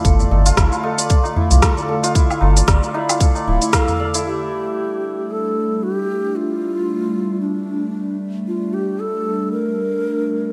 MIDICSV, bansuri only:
0, 0, Header, 1, 2, 480
1, 0, Start_track
1, 0, Tempo, 526316
1, 45, Time_signature, 4, 2, 24, 8
1, 9599, End_track
2, 0, Start_track
2, 0, Title_t, "Bansuri"
2, 0, Program_c, 0, 73
2, 3402, Note_on_c, 0, 70, 99
2, 3442, Note_on_c, 0, 69, 107
2, 3451, Note_off_c, 0, 70, 0
2, 3849, Note_off_c, 0, 69, 0
2, 3886, Note_on_c, 0, 67, 96
2, 4839, Note_on_c, 0, 69, 90
2, 4852, Note_off_c, 0, 67, 0
2, 5318, Note_on_c, 0, 66, 91
2, 5331, Note_off_c, 0, 69, 0
2, 5418, Note_off_c, 0, 66, 0
2, 5418, Note_on_c, 0, 67, 91
2, 5799, Note_on_c, 0, 65, 95
2, 5813, Note_off_c, 0, 67, 0
2, 6752, Note_off_c, 0, 65, 0
2, 6757, Note_on_c, 0, 62, 74
2, 7444, Note_off_c, 0, 62, 0
2, 7732, Note_on_c, 0, 65, 86
2, 7966, Note_on_c, 0, 67, 81
2, 7980, Note_off_c, 0, 65, 0
2, 8206, Note_on_c, 0, 69, 88
2, 8219, Note_off_c, 0, 67, 0
2, 8679, Note_off_c, 0, 69, 0
2, 8685, Note_on_c, 0, 70, 102
2, 9599, Note_off_c, 0, 70, 0
2, 9599, End_track
0, 0, End_of_file